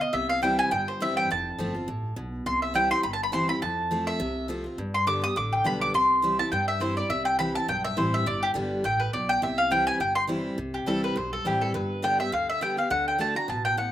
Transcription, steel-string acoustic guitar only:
Already playing: B2
0.13 C3
0.42 E3 G3 C4 E4
0.71 G2
1.00 E3 G3 C4 E4
1.31 F2
1.58 F3 A3 C4 F4
1.74 C4 F4
1.88 A2
2.16 B2
2.46 C3
2.74 E3 G3 C4 E4
2.90 C4 E4
3.03 G2
3.32 E3 G3 C4 E4
3.48 C4 E4
3.62 F2
3.91 F3 A3 C4 F4
4.20 C3
4.48 F3 A3 C4 F4
4.64 C4 F4
4.78 G2
5.07 D3 G3 B3 G4
5.22 B3 G4
5.36 D3
5.64 D3 G3 B3 G4
5.94 C3
6.22 E3 G3 C4 E4
6.39 C4 E4
6.53 G2
6.80 E3 G3 C4 E4
6.97 C4 E4
7.10 C3
7.39 E3 G3 C4 E4
7.55 C4 E4
7.68 G2
7.97 E3 G3 C4 E4
8.26 G2
8.54 D3 G3 B3 G4
8.84 A2
9.13 B2
9.42 C3
9.71 E3 G3 C4 E4
10.00 G2
10.27 E3 G3 C4 E4
10.58 C3
10.86 E3 G3 C4 E4
11.16 G2
11.45 E3 G3 C4 E4
11.74 G2
12.02 D3 G3 B3 G4
12.19 B3 G4
12.32 D3
12.61 D3 G3 B3 G4
12.77 B3 G4
12.90 D3
13.18 D3 A3 D4 F#4
13.35 D4 F#4
13.48 B2
13.77 A2

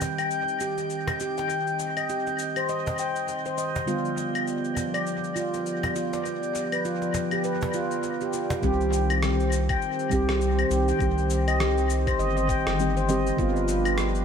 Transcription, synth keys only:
Already playing: D#3 G3 C4 G4
3.86 D3 G3 B3 F4
8.62 D#3 G3 C4
8.66 G4
10.10 D#3 G3 C4
10.14 G4
10.99 D#3 G3 C4 G4
12.79 D#3 G3 C4 G4
13.09 D#3 G3 C4 G4
13.37 D3 G3 B3
13.41 F4

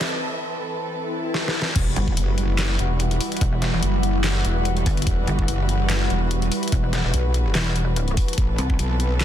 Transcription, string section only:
Already playing: E3 C4 A4 B4
1.76 E3 G3 F#4 B4
8.38 C4 A4

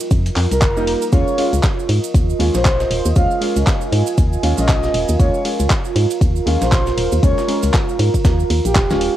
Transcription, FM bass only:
0.11 F2
0.36 F2
0.51 C2
0.62 F1
1.13 D#2
1.53 C#2
1.89 G#2
2.14 D#2
2.40 D#2
2.55 A#1
2.91 D#1
3.06 D#2
3.16 D#2
3.56 C#2
3.92 G#2
4.18 D#2
4.43 D#2
4.58 A#1
4.94 D#1
5.09 D#2
5.20 D#2
5.60 C#2
5.96 G#2
6.21 D#2
6.47 D#2
6.62 A#1
6.97 D#1
7.12 D#2
7.23 D#2
7.63 C#2
7.99 G#2
8.25 D#2
8.50 D#2
8.65 A#1

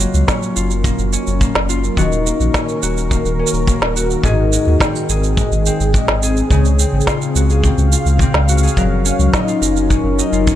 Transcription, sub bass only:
0.14 C#2
0.57 F#1
0.99 F#1
1.27 F#1
1.56 F#1
1.97 D#1
2.40 A#1
2.83 D#1
3.25 D#1
3.53 D#1
3.81 D#1
4.24 G#1
4.67 D#2
5.09 G#1
5.52 G#1
5.80 G#1
6.08 G#1
6.50 C#2
6.93 G#1
7.35 C#2
7.78 C#2
8.06 C#2
8.34 C#2
8.77 F#1
9.19 C#2
9.62 F#1
10.04 F#1
10.32 F#1

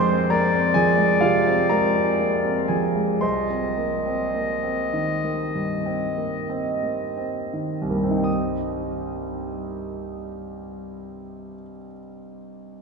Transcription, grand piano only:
Already playing: F2 G#3 C4 C5 D5 C6 D6
0.11 C4
0.30 A#3 A#4 A#5
0.54 C4
0.74 F3 G#4 G#5
0.98 G#3
1.21 C3 F4 F5
1.47 C4
1.69 G#3 A#4 A#5
1.96 C4
2.20 A#3
2.44 C4
2.68 F3 G#4 G#5
2.96 G#3
3.21 C2 C5 C6
3.50 C4
3.77 A#3
4.06 C4
4.34 A#3
4.63 C4
4.93 D#3
5.25 A#3
5.55 G2
5.86 C4
6.18 A#3
6.50 C4
6.83 A#3
7.17 C4
7.54 D#3
7.81 C2
7.89 G2 A#3
7.96 G3
8.04 C4
8.11 D#4
8.18 G4
8.24 D#6

